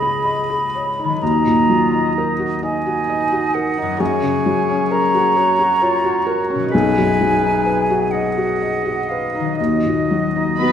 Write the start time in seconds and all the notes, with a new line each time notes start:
Already playing: C#2 G#2 C#3 G#3 D#4 G#4 C#5 D#5 B5
0.02 G#4
0.25 D#5
0.50 G#4
0.75 C#5
0.99 D#4
1.04 D#3
1.09 F#3
1.13 D#4
1.18 F#4 A#4
1.22 D#2 D#5 A#5
1.47 A#2
1.69 F#3 F4
1.94 D#4
2.15 D#4 A#4
2.39 F#4
2.63 D#4 D#5 G#5
2.87 F#4
3.10 D#5
3.32 F#4
3.54 A#4 F#5
3.78 D#4
3.82 F#2
3.87 F#3
3.91 C#4
3.96 G#4 A#4
4.00 F#2 C#5 G#5
4.22 C#3
4.46 F#3
4.69 C#4
4.91 A#4 A#5
5.15 F#4
5.36 F#4 C#5
5.59 F#4
5.82 F4 C#5
6.04 F#4
6.25 F#4 A#4
6.50 C#4
6.55 B2
6.59 F#3
6.64 D#4
6.68 G#4 B4
6.72 B1 G#5
6.98 F#2
7.21 F#3
7.43 D#4
7.66 B4
7.90 F#4
8.11 D#5 F#5
8.38 F#4
8.62 D#5
8.86 F#4
9.09 B4 F5
9.35 D#4
9.40 D#3
9.44 F#3
9.49 D#4
9.57 D#2 F#4 D#5
9.86 A#2
10.11 F#3
10.36 D#4
10.59 B3 F#4 B4 B5